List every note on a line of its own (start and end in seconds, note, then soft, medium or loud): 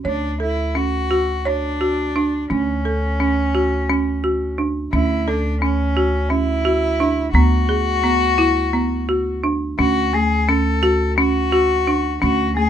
0.05 2.46 D2 medium
0.05 0.38 D4 medium
0.05 0.32 C#5 medium
0.40 0.78 E4 medium
0.40 0.68 A4 medium
0.75 1.03 C#4 medium
0.75 1.48 F#4 medium
1.11 1.38 F#4 medium
1.45 2.51 D4 medium
1.45 1.73 C#5 medium
1.81 2.08 F#4 medium
2.16 2.43 D4 medium
2.50 4.88 D2 medium
2.50 2.77 C#4 medium
2.50 4.54 C#4 medium
2.85 3.12 A4 medium
3.20 3.47 C#4 medium
3.55 3.81 F#4 medium
3.90 4.16 C#4 medium
4.24 4.50 F#4 medium
4.58 4.85 D4 medium
4.93 7.30 D2 medium
4.93 5.19 C#4 medium
4.93 5.29 E4 medium
5.28 5.61 D4 medium
5.28 5.54 A4 medium
5.61 6.31 C#4 medium
5.61 5.88 C#4 medium
5.97 6.23 F#4 medium
6.30 6.57 C#4 medium
6.30 7.32 E4 medium
6.65 6.92 F#4 medium
7.00 7.27 D4 medium
7.33 9.74 D2 medium
7.33 7.61 B3 medium
7.33 9.39 F#4 loud
7.69 7.96 G#4 medium
8.04 8.31 B3 medium
8.38 8.65 E4 medium
8.73 9.01 B3 medium
9.09 9.36 F#4 medium
9.44 9.71 D4 medium
9.79 12.18 D2 medium
9.79 10.06 C#4 medium
9.79 10.15 F#4 loud
10.13 10.41 A3 medium
10.13 10.50 G#4 medium
10.48 10.76 C#4 medium
10.48 11.18 A4 medium
10.83 11.10 F#4 medium
11.18 11.45 C#4 medium
11.18 12.18 F#4 loud
11.52 11.79 F#4 medium
11.87 12.14 D4 medium
12.22 12.70 D2 medium
12.22 12.48 C#4 medium
12.22 12.54 F#4 loud
12.57 12.70 A3 medium
12.57 12.70 G#4 medium